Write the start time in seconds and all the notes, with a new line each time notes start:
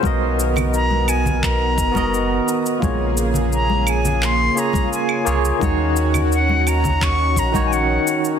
0.01 B1 D#3 B3 F#4 A#4, kick, high conga, shaker
0.07 D#5
0.40 shaker
0.56 low conga, claves, shaker
0.74 A#5, shaker
0.91 high conga
1.08 G#5, claves, shaker
1.26 kick, low conga, shaker
1.43 A#5, kick, clap, shaker
1.78 F#1, kick, shaker
1.92 B3 F#4 A#4, kick, high conga
1.97 D#5, shaker
2.14 shaker
2.48 shaker
2.66 shaker
2.79 C#3 A#3 F4 G#4, kick, high conga
2.83 A#1 C#5, shaker
3.17 shaker
3.34 low conga, shaker
3.53 A#5, shaker
3.70 high conga
3.87 G#5, claves, shaker
4.05 low conga, shaker
4.22 C6, clap, shaker
4.55 A#3 F4 G#4 C#5 A#5, shaker
4.73 kick, high conga, shaker
4.93 G#5, shaker
5.09 claves
5.25 C2 A#3 F4 G#4 C#5, shaker
5.45 shaker
5.59 D#2 D#3 C#4 D#4 F#4, kick, high conga, shaker
5.64 C#5
5.96 shaker
6.14 low conga, claves, shaker
6.32 F#5, shaker
6.49 high conga
6.67 A#5, claves, shaker
6.84 kick, low conga, shaker
7.02 C#6, kick, clap, shaker
7.36 A#1 A#5, kick, shaker
7.52 D#3 D#4 F#4, kick, high conga, shaker
7.56 C#5
7.66 G#5
7.73 F#5, shaker
8.07 shaker
8.25 shaker